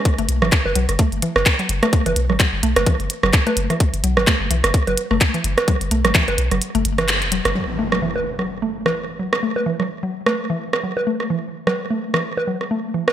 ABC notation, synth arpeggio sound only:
X:1
M:4/4
L:1/16
Q:"Swing 16ths" 1/4=128
K:F#m
V:1 name="Synth arpeggio sound" clef=bass
z A, z E, z2 F, z A, z E, z2 F, z A, | z E, z2 F, z A, z E, z2 F, z A, z E, | z2 F, z A, z E, z2 F, z A, z E, z2 | F, z A, z E, z2 F, z A, z E, z2 F, z |
F, z A, z E, z2 F, z A, z E, z2 F, z | A, z E, z2 F, z A, z E, z2 F, z A, z | E, z2 F, z A, z E, z2 F, z A, z E, z |]